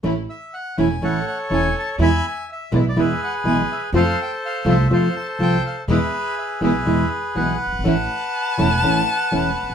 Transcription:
<<
  \new Staff \with { instrumentName = "Violin" } { \time 4/4 \key e \mixolydian \tempo 4 = 123 r1 | r1 | r1 | r1 |
a''1 | }
  \new Staff \with { instrumentName = "Bandoneon" } { \time 4/4 \key e \mixolydian << { r8 e''8 fis''8 gis''8 fis''8 fis''8 gis''8 a''8 | b''8 gis''8 e''8 d''32 e''32 d''16 e''8 fis''8 gis''8 e''8 | f''8 g''8 f''8 e''8 f''8 a''8 g''8 f''8 | e''4 e''8 e''4 r8 fis''4~ |
fis''1 | } \\ { r2 <a' cis''>2 | <e'' gis''>2 <gis' b'>2 | <a' c''>2 <a' c''>2 | <gis' b'>4. <gis' b'>4. b'4~ |
b'1 | } >> }
  \new Staff \with { instrumentName = "String section" } { \time 4/4 \key e \mixolydian <a cis' e'>8 r4 <a cis' e'>8 <a cis' e'>8 r8 <a cis' e'>8 r8 | <gis b e'>8 r4 <gis b e'>8 <gis b e'>8 r8 <gis b e'>8 r8 | <a c' f'>8 r4 <a c' f'>8 <a c' f'>8 r8 <a c' f'>8 r8 | <gis b e'>8 r4 <gis b e'>8 <gis b e'>8 r8 <gis b e'>8 r8 |
<a cis' e'>8 r4 <a cis' e'>8 <a cis' e'>8 r8 <a cis' e'>8 r8 | }
  \new Staff \with { instrumentName = "Nylon-string guitar" } { \time 4/4 \key e \mixolydian <e a cis' e'>8 r4 <e a cis' e'>8 <e a cis' e'>8 r8 <e a cis' e'>8 r8 | <b, e gis b e'>8 r4 <b, e gis b e'>8 <b, e gis b e'>8 r8 <b, e gis b e'>8 r8 | <c f a c' f'>8 r4 <c f a c' f'>8 <c f a c' f'>8 r8 <c f a c' f'>8 r8 | <b, e gis b e'>8 r4 <b, e gis b e'>8 <b, e gis b e'>8 r8 <b, e gis b e'>8 r8 |
<e a cis' e'>8 r4 <e a cis' e'>8 <e a cis' e'>8 r8 <e a cis' e'>8 r8 | }
  \new Staff \with { instrumentName = "Upright bass" } { \clef bass \time 4/4 \key e \mixolydian a,,16. r4 r32 e,,16. r32 a,,16. r8 r32 e,,16. r8 r32 | e,16. r4 r32 b,,16. r32 e,16. r8 r32 b,,16. r8 r32 | f,16. r4 r32 c,16. r32 f,16. r8 r32 c,16. r8 r32 | e,16. r4 r32 b,,16. r32 e,16. r8 r32 b,,16. r16 fis,,32 g,,32 gis,,32 |
a,,16. r4 r32 e,,16. r32 a,,16. r8 r32 e,,16. r16 gis,,32 a,,32 r32 | }
>>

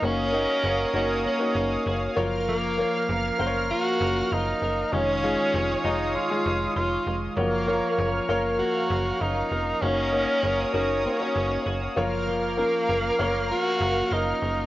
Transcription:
<<
  \new Staff \with { instrumentName = "Analog synth pad" } { \time 4/4 \key fis \major \tempo 4 = 98 << { <cis'' dis'''>2.~ <cis'' dis'''>8 <ais' eis'''>8~ | <ais' eis'''>1 | <cis'' dis'''>1 | <ais' eis'''>1 |
<cis'' dis'''>2.~ <cis'' dis'''>8 <ais' eis'''>8~ | <ais' eis'''>1 | } \\ { eis''1~ | eis''1 | eis''1 | eis''1~ |
eis''2.~ eis''8 eis''8~ | eis''1 | } >> }
  \new Staff \with { instrumentName = "Horn section" } { \time 4/4 \key fis \major <fis dis' ais'>2. r8 <ais ais' eis''>8~ | <ais ais' eis''>2.~ <ais ais' eis''>8 r8 | <gis eis' cis''>2.~ <gis eis' cis''>8 r8 | <ais ais' cis''>2.~ <ais ais' cis''>8 r8 |
<fis dis' ais'>2. r8 <ais ais' eis''>8~ | <ais ais' eis''>2.~ <ais ais' eis''>8 r8 | }
  \new Staff \with { instrumentName = "Grand piano" } { \time 4/4 \key fis \major <ais dis' fis' cis''>8 <ais dis' fis' dis''>4 <ais dis' fis' cis''>8. <ais dis' fis' cis''>4~ <ais dis' fis' cis''>16 <ais eis' ais' cis''>8~ | <ais eis' ais' cis''>8 <ais eis' ais' cis''>4 <ais ais' bis' cis'' eis''>2 r8 | <gis dis' eis' cis''>8 <gis dis' eis' gis'>4 <gis dis' eis' cis''>8. <gis dis' eis' gis'>4.~ <gis dis' eis' gis'>16 | <ais eis' fis' cis''>8 <ais eis' ais' cis''>4 <ais ais' cis'' eis''>2 r8 |
<ais dis' fis' cis''>8 <ais dis' fis' cis''>4 <ais dis' fis' ais'>8. <ais dis' fis' cis''>4~ <ais dis' fis' cis''>16 <ais eis' ais' cis''>8~ | <ais eis' ais' cis''>8 <ais cis' eis' ais'>4 <ais ais' cis'' eis''>2 r8 | }
  \new Staff \with { instrumentName = "Tenor saxophone" } { \time 4/4 \key fis \major cis'4. cis'8 cis'4. r8 | ais4. r8 fis'4 dis'4 | cis'4. dis'8 eis'4 eis'8. r16 | ais4. r8 fis'4 dis'4 |
cis'4. cis'8 cis'4. r8 | ais2 fis'4 dis'4 | }
  \new Staff \with { instrumentName = "Clean electric guitar" } { \time 4/4 \key fis \major ais8 ais8 cis'8 fis'8 ais8 cis'8 fis'8 eis8 | eis8 ais8 b16 cis'16 eis'8 ais8 cis'8 eis'8 ais8 | dis8 gis8 cis'16 dis'16 eis'8 gis8 dis'8 eis'8 gis8 | eis8 ais8 cis'8 eis'8 ais8 cis'8 eis'8 ais8 |
ais8 ais8 cis'8 fis'8 ais8 b16 cis'16 fis'8 eis8 | eis8 ais8 cis'8 eis'8 ais8 cis'8 eis'8 ais8 | }
  \new Staff \with { instrumentName = "FM bass" } { \clef bass \time 4/4 \key fis \major fis,,4 fis,,8 fis,,8. r16 fis,,8 fis,,8 fis,,8~ | fis,,4 fis,,8 fis,,8. r16 fis,,8 fis,,8 fis,,8 | eis,,4 eis,,8 eis,,8. r16 eis,,8 eis,,8 eis,,8 | fis,,4 fis,,8 fis,,8. r16 fis,,8 fis,,8 eis,,8 |
fis,,4 fis,,8 fis,,8. r16 fis,,8 fis,,8 fis,,8~ | fis,,4 fis,,8 fis,,8. r16 fis,,8 fis,,8 fis,,8 | }
>>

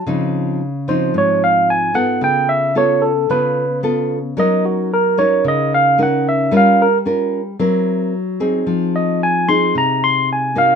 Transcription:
<<
  \new Staff \with { instrumentName = "Tine electric piano" } { \time 4/4 \key des \major \tempo 4 = 112 r4. c''8 des''8 f''8 aes''8 ges''8 | g''8 e''8 des''8 a'8 ces''4 r4 | ees''8 ges'8 bes'8 des''8 ees''8 f''8 ges''8 e''8 | f''8 bes'8 r2. |
r8 ees''8 aes''8 c'''8 bes''8 c'''8 aes''8 f''8 | }
  \new Staff \with { instrumentName = "Nylon-string guitar" } { \time 4/4 \key des \major << { <f c' ees'>4 r8 <f c' ees'>2 <ces' f' a'>8~ | <ces' f' a'>4 <ces' f' a'>8 r8 <ces' f' a'>8 r8 <ces' f' a'>8 r8 | <des' ees' bes'>4 r8 <des' ees' bes'>4. <des' ees' bes'>4 | <des' f' bes'>8 r8 <des' f' bes'>8 r8 <c' fes' bes'>4 r8 <c' ees' aes'>8~ |
<c' ees' aes'>4. <c' ees' aes'>2 <bes ees' ges'>8 | } \\ { des2 aes,2 | des2 des2 | ges2 des2 | g2 ges2 |
f2 c2 | } >> }
>>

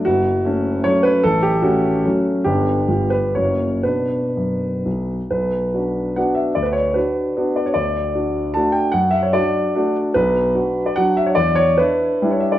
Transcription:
\new Staff \with { instrumentName = "Grand piano" } { \time 3/4 \key b \minor \tempo 4 = 147 << { fis'2 cis''8 b'8 | a'8 g'8 fis'4. r8 | g'4. b'8 cis''4 | b'2~ b'8 r8 |
b'2 fis''8 e''8 | d''16 b'16 cis''8 b'4. d''16 cis''16 | d''2 a''8 g''8 | fis''8 e''16 cis''16 d''4. r8 |
\key e \dorian b'4.~ b'16 d''16 fis''8 e''16 cis''16 | d''8 cis''8 b'4~ b'16 cis''16 e''16 d''16 | } \\ { fis,,4 <a cis'>4 <fis a cis'>4 | a,,4 <a cis'>4 <fis a cis'>4 | <g,, d b d'>4 <g,, g b f'>4 <fis,, ais cis' fis'>4 | <b, d' fis'>4 fis,4 b,,4 |
b,,4 <d' fis'>4 <b d' fis'>4 | d,4 <d' fis'>4 <b d' fis'>4 | d,4 <d' fis'>4 <a d' fis'>4 | fis,4 <d' fis'>4 <a d' fis'>4 |
b,,4 <d' fis'>4 <fis d' fis'>4 | e,4 <d' e'>4 <g d' e'>4 | } >> }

